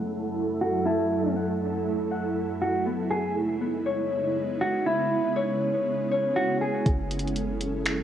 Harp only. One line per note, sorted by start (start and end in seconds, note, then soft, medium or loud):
0.00 2.94 A3 medium
0.00 1.36 F#5 medium
0.86 2.36 A5 loud
1.36 2.11 F#5 medium
2.11 3.72 F#5 medium
2.86 3.60 B3 medium
3.61 6.71 B3 medium
3.86 5.36 C#5 loud
4.86 6.36 B5 loud
5.36 6.11 C#5 medium
6.11 8.02 C#5 medium